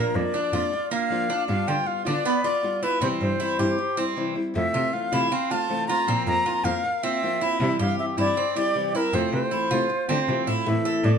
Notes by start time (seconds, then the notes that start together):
Already playing: F3 A#3 D4 F4 A#4
0.15 F2 D5
0.34 F3 A#3 D4 F4
0.53 F2 A#3 D4 F4
0.73 muted nylon-string guitar stroke
0.91 A#3 D4 F4 F5
1.10 F3 A#3 D4 F4
1.30 A#3 D4 F4
1.48 G2 G3 B3 F4 F5
1.68 D3 F4 G5
1.86 G3 B3 F4 F5
2.05 D3 B3 D4 F4 D5
2.25 B3, muted nylon-string guitar stroke
2.44 B3 F4 D5
2.63 G3 B3 F4
2.82 B3 E4 F4 B4
3.01 C3 E3 G3 C4 E4 C5
3.21 G2 C5
3.39 E3 G3 C4 E4
3.59 G2 E3 G3 C4 E4 G4
3.78 muted nylon-string guitar stroke
3.97 G3 C4 E4
4.16 C3 E3 G3 C4 E4
4.35 G3 C4 E4
4.54 F2 C3 A3 C4 F4 E5
4.74 C3 F4
4.92 E3 A3 C4 F4 F5
5.12 C3 E3 A3 C4 E4 F4
5.31 C4 F5, muted nylon-string guitar stroke
5.50 A3 C4 F4 A5
5.69 C3 E3 A3 C4 F4
5.87 A3 C4 F4 A#5
6.08 A#2 F3 A#3 C4 F4
6.27 F2 A#5
6.46 F3 A#3 C4 F4
6.64 F2 A#3 C4 F4 A#4 F5
6.85 muted nylon-string guitar stroke
7.03 A#3 C4 F4 E5
7.22 F3 A#3 C4 F4
7.41 A#3 C4 E4 F4
7.60 C3 E3 G3 C4 E4 E5
7.79 G2 G4 F5
7.98 E3 G3 C4 E4 E5
8.17 G2 E3 G3 C4 E4 D5
8.36 C4, muted nylon-string guitar stroke
8.55 G3 C4 E4 G4 D5
8.75 C3 E3 G3 C4 E4
8.94 G3 C4 E4 A#4
9.13 F2 C3 A3 C4 F4 C5
9.33 C3 C5
9.51 E3 A3 C4 E4 F4
9.71 C3 E3 A3 C4 F4
9.89 muted nylon-string guitar stroke
10.08 D3 A3 C4 F4
10.28 C3 E3 A3 C4 F4
10.47 A2 A3 C4 E4 F4
10.66 A2 E3 A3 C4 E4 E5
10.85 A4
11.04 A2 E3 A3 C4 E4 D5